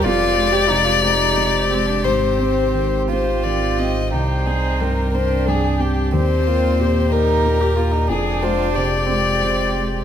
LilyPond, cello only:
\new Staff \with { instrumentName = "Cello" } { \time 6/8 \key f \dorian \tempo 4. = 60 f'8. g'16 ees'16 f'16 ees'4 c'16 d'16 | c'4. f'4. | ees'4. d'4. | c'4. ees'8. g'16 f'16 ees'16 |
d'4. c'4. | }